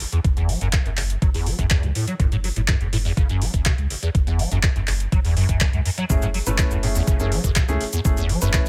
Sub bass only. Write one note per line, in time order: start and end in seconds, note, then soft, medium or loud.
0.25 0.56 F#1 loud
0.61 0.78 F#1 medium
0.86 1.16 F#1 medium
1.22 1.53 F#1 medium
1.59 1.76 F#1 medium
1.83 1.92 C#2 medium
2.20 2.51 F#1 loud
2.56 2.74 F#1 medium
2.81 3.12 F#1 medium
3.17 3.48 F#1 medium
3.54 3.71 F#1 medium
3.78 3.87 C#2 medium
4.15 4.46 F#1 loud
4.51 4.69 F#1 medium
4.76 5.07 F#1 medium
5.12 5.43 F#1 medium
5.49 5.66 F#1 medium
5.73 5.82 C#2 medium
6.10 6.41 F#1 loud
6.47 6.64 F#1 medium
6.71 7.02 F#1 medium
7.07 7.38 F#1 medium
7.44 7.61 F#1 medium
7.69 7.77 C#2 medium
8.05 8.36 F#1 loud
8.42 8.59 F#1 medium